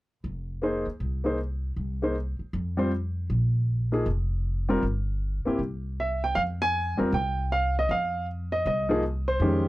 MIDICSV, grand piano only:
0, 0, Header, 1, 2, 480
1, 0, Start_track
1, 0, Key_signature, -4, "minor"
1, 0, Tempo, 382166
1, 303, Time_signature, 4, 2, 24, 8
1, 12159, End_track
2, 0, Start_track
2, 0, Title_t, "Grand piano"
2, 0, Program_c, 0, 0
2, 776, Note_on_c, 0, 58, 47
2, 791, Note_on_c, 0, 63, 45
2, 793, Note_on_c, 0, 68, 48
2, 800, Note_on_c, 0, 72, 55
2, 1059, Note_off_c, 0, 58, 0
2, 1066, Note_off_c, 0, 63, 0
2, 1067, Note_off_c, 0, 68, 0
2, 1070, Note_off_c, 0, 72, 0
2, 1556, Note_on_c, 0, 58, 47
2, 1563, Note_on_c, 0, 63, 47
2, 1575, Note_on_c, 0, 68, 42
2, 1581, Note_on_c, 0, 72, 54
2, 1719, Note_off_c, 0, 58, 0
2, 1722, Note_off_c, 0, 63, 0
2, 1728, Note_off_c, 0, 68, 0
2, 1731, Note_off_c, 0, 72, 0
2, 2539, Note_on_c, 0, 58, 49
2, 2543, Note_on_c, 0, 63, 43
2, 2547, Note_on_c, 0, 68, 42
2, 2559, Note_on_c, 0, 72, 54
2, 2691, Note_off_c, 0, 58, 0
2, 2693, Note_off_c, 0, 63, 0
2, 2695, Note_off_c, 0, 68, 0
2, 2701, Note_off_c, 0, 72, 0
2, 3481, Note_on_c, 0, 55, 54
2, 3492, Note_on_c, 0, 60, 48
2, 3494, Note_on_c, 0, 65, 44
2, 3505, Note_on_c, 0, 72, 62
2, 3642, Note_off_c, 0, 55, 0
2, 3648, Note_off_c, 0, 60, 0
2, 3649, Note_off_c, 0, 65, 0
2, 3654, Note_off_c, 0, 72, 0
2, 4923, Note_on_c, 0, 53, 49
2, 4925, Note_on_c, 0, 58, 46
2, 4927, Note_on_c, 0, 63, 44
2, 4943, Note_on_c, 0, 68, 59
2, 5084, Note_off_c, 0, 53, 0
2, 5085, Note_off_c, 0, 58, 0
2, 5086, Note_off_c, 0, 63, 0
2, 5093, Note_off_c, 0, 68, 0
2, 5887, Note_on_c, 0, 55, 59
2, 5891, Note_on_c, 0, 60, 56
2, 5897, Note_on_c, 0, 65, 53
2, 5904, Note_on_c, 0, 70, 71
2, 6046, Note_off_c, 0, 55, 0
2, 6048, Note_off_c, 0, 60, 0
2, 6051, Note_off_c, 0, 65, 0
2, 6054, Note_off_c, 0, 70, 0
2, 6851, Note_on_c, 0, 58, 49
2, 6862, Note_on_c, 0, 60, 42
2, 6868, Note_on_c, 0, 64, 44
2, 6874, Note_on_c, 0, 67, 53
2, 7007, Note_off_c, 0, 58, 0
2, 7013, Note_off_c, 0, 60, 0
2, 7016, Note_off_c, 0, 64, 0
2, 7019, Note_off_c, 0, 67, 0
2, 7535, Note_on_c, 0, 76, 69
2, 7809, Note_off_c, 0, 76, 0
2, 7835, Note_on_c, 0, 79, 74
2, 7979, Note_on_c, 0, 77, 92
2, 7985, Note_off_c, 0, 79, 0
2, 8049, Note_off_c, 0, 77, 0
2, 8312, Note_on_c, 0, 80, 101
2, 8750, Note_off_c, 0, 80, 0
2, 8759, Note_on_c, 0, 55, 49
2, 8768, Note_on_c, 0, 60, 54
2, 8776, Note_on_c, 0, 65, 44
2, 8781, Note_on_c, 0, 70, 59
2, 8920, Note_off_c, 0, 55, 0
2, 8925, Note_off_c, 0, 60, 0
2, 8929, Note_off_c, 0, 65, 0
2, 8931, Note_off_c, 0, 70, 0
2, 8969, Note_on_c, 0, 79, 76
2, 9447, Note_on_c, 0, 77, 83
2, 9450, Note_off_c, 0, 79, 0
2, 9724, Note_off_c, 0, 77, 0
2, 9782, Note_on_c, 0, 75, 77
2, 9933, Note_off_c, 0, 75, 0
2, 9934, Note_on_c, 0, 77, 81
2, 10366, Note_off_c, 0, 77, 0
2, 10704, Note_on_c, 0, 75, 75
2, 10871, Note_off_c, 0, 75, 0
2, 10890, Note_on_c, 0, 75, 70
2, 11166, Note_on_c, 0, 53, 63
2, 11175, Note_on_c, 0, 63, 57
2, 11178, Note_on_c, 0, 58, 56
2, 11187, Note_on_c, 0, 68, 65
2, 11322, Note_off_c, 0, 53, 0
2, 11323, Note_off_c, 0, 75, 0
2, 11327, Note_off_c, 0, 63, 0
2, 11328, Note_off_c, 0, 58, 0
2, 11333, Note_off_c, 0, 68, 0
2, 11654, Note_on_c, 0, 72, 75
2, 11816, Note_on_c, 0, 51, 56
2, 11826, Note_on_c, 0, 56, 50
2, 11829, Note_on_c, 0, 67, 63
2, 11832, Note_on_c, 0, 61, 54
2, 12159, Note_off_c, 0, 51, 0
2, 12159, Note_off_c, 0, 56, 0
2, 12159, Note_off_c, 0, 61, 0
2, 12159, Note_off_c, 0, 67, 0
2, 12159, Note_off_c, 0, 72, 0
2, 12159, End_track
0, 0, End_of_file